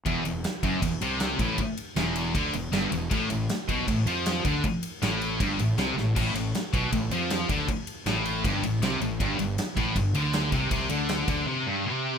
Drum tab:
CC |--------|--------|--------|--------|
RD |xxxxxxxx|xxxxxxxx|xxxxxxxx|xxxxxxx-|
SD |--o---o-|--o---o-|--o---o-|--o---oo|
BD |o--oo--o|o---o---|o--oo--o|o---o---|

CC |x-------|--------|--------|--------|
RD |-xxxxxxx|xxxxxxxx|xxxxxxxx|xxxx----|
SD |--o---o-|--o---o-|--o---o-|--o-----|
BD |o--oo--o|o---o---|o--oo--o|o--o----|